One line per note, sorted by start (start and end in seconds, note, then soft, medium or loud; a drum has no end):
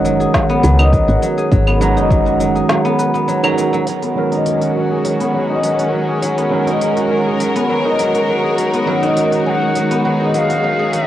0.00 0.26 F#1 medium
0.00 1.77 D#3 medium
0.00 1.77 G#3 medium
0.00 0.49 B3 medium
0.00 1.78 C#4 medium
0.00 0.78 D#4 medium
0.00 1.08 F#4 medium
0.00 1.78 F#4 medium
0.00 0.20 G#4 medium
0.00 1.79 A#4 medium
0.05 0.33 F#3 medium
0.05 shaker medium
0.20 1.37 G#4 medium
0.20 shaker soft
0.34 0.62 F#3 medium
0.34 kick medium
0.34 snare medium
0.34 shaker soft
0.49 1.67 B3 loud
0.49 shaker soft
0.63 0.99 C#2 medium
0.63 0.91 F#3 loud
0.63 shaker medium
0.79 1.96 D#4 medium
0.79 claves medium
0.79 shaker soft
0.93 1.21 F#3 medium
0.93 kick loud
0.93 shaker soft
1.08 1.17 G#1 medium
1.08 2.26 F#4 medium
1.08 shaker soft
1.22 1.50 F#3 medium
1.22 shaker medium
1.38 2.55 G#4 medium
1.38 shaker soft
1.52 1.98 G#1 medium
1.52 1.80 F#3 medium
1.52 kick loud
1.52 shaker soft
1.67 2.84 B3 medium
1.67 claves medium
1.67 shaker soft
1.79 3.40 D#3 medium
1.79 2.09 F#3 loud
1.79 3.40 G#3 medium
1.79 3.41 C#4 medium
1.79 3.41 F#4 medium
1.79 shaker medium
1.83 3.42 A#5 medium
1.97 2.61 F#1 medium
1.97 4.31 D#4 medium
1.97 shaker soft
2.11 2.39 F#3 medium
2.11 kick loud
2.11 shaker soft
2.26 4.61 F#4 medium
2.26 shaker soft
2.40 2.68 F#3 medium
2.40 shaker medium
2.55 4.83 G#4 medium
2.55 shaker soft
2.69 3.27 F#3 medium
2.69 snare medium
2.69 shaker soft
2.85 3.14 B3 loud
2.85 shaker soft
2.99 5.04 B4 medium
2.99 shaker medium
3.14 4.02 B3 medium
3.14 shaker soft
3.28 3.42 F#3 medium
3.28 shaker soft
3.43 3.85 D#3 medium
3.43 3.56 F#3 loud
3.43 3.85 G#3 medium
3.43 3.85 C#4 medium
3.43 3.86 F#4 medium
3.43 3.86 A#5 medium
3.43 claves medium
3.43 shaker soft
3.58 3.72 F#3 medium
3.58 shaker medium
3.73 3.86 F#3 medium
3.73 shaker soft
3.87 11.07 D#3 medium
3.87 4.15 F#3 medium
3.87 open hi-hat medium
4.03 5.20 B3 medium
4.03 open hi-hat soft
4.15 6.47 D#3 medium
4.15 4.45 F#3 medium
4.15 6.48 G#3 medium
4.15 6.49 C#4 medium
4.15 6.49 F#4 medium
4.15 6.49 A#4 medium
4.32 8.58 C#4 medium
4.32 5.49 D#4 medium
4.32 open hi-hat soft
4.46 4.74 F#3 medium
4.46 open hi-hat medium
4.59 11.07 G#3 medium
4.59 5.78 F#4 medium
4.59 open hi-hat soft
4.69 11.07 F#4 medium
4.75 5.03 F#3 medium
4.91 6.08 G#4 medium
5.05 5.33 F#3 medium
5.05 open hi-hat medium
5.20 6.37 B3 medium
5.20 open hi-hat soft
5.34 5.62 F#3 medium
5.49 6.67 D#4 medium
5.63 5.91 F#3 medium
5.63 open hi-hat medium
5.79 6.96 F#4 medium
5.79 open hi-hat soft
5.93 6.21 F#3 medium
6.08 7.26 G#4 medium
6.22 6.50 F#3 medium
6.22 open hi-hat medium
6.38 7.55 B3 medium
6.38 open hi-hat soft
6.50 8.83 D#3 medium
6.50 6.80 F#3 medium
6.50 8.83 G#3 medium
6.50 8.84 C#4 medium
6.50 8.84 F#4 medium
6.54 8.85 A#4 medium
6.63 10.27 A#4 medium
6.67 7.84 D#4 medium
6.67 open hi-hat soft
6.81 7.09 F#3 medium
6.81 open hi-hat medium
6.97 8.14 F#4 medium
6.97 open hi-hat soft
7.11 7.39 F#3 medium
7.26 8.43 G#4 medium
7.40 7.68 F#3 medium
7.40 open hi-hat medium
7.55 8.73 B3 medium
7.55 open hi-hat soft
7.69 7.97 F#3 medium
7.85 9.02 D#4 medium
7.99 8.27 F#3 medium
7.99 open hi-hat medium
8.14 9.32 F#4 medium
8.14 open hi-hat soft
8.28 8.56 F#3 medium
8.41 11.07 D#4 medium
8.41 9.61 G#4 medium
8.58 8.86 F#3 medium
8.58 open hi-hat medium
8.73 9.90 B3 medium
8.73 open hi-hat soft
8.85 11.07 D#3 medium
8.85 9.15 F#3 medium
8.85 11.07 G#3 medium
8.85 11.07 C#4 medium
8.85 11.07 F#4 medium
8.85 11.07 A#4 medium
9.03 10.20 D#4 medium
9.03 open hi-hat soft
9.17 9.45 F#3 medium
9.17 open hi-hat medium
9.32 10.49 F#4 medium
9.32 open hi-hat soft
9.46 9.74 F#3 medium
9.46 9.51 G#5 medium
9.50 10.01 F#5 loud
9.61 10.79 G#4 medium
9.75 10.04 F#3 medium
9.75 open hi-hat medium
9.91 11.07 B3 medium
9.91 open hi-hat soft
10.05 10.33 F#3 medium
10.05 11.07 G#4 medium
10.05 10.11 F#5 medium
10.20 11.07 D#4 medium
10.34 10.63 F#3 medium
10.34 10.94 F5 medium
10.34 10.39 F#5 medium
10.34 open hi-hat medium
10.50 11.07 F#4 medium
10.50 open hi-hat soft
10.64 10.92 F#3 medium
10.79 11.07 G#4 medium
10.93 11.07 F#3 medium
10.93 11.07 D#5 loud
10.93 open hi-hat medium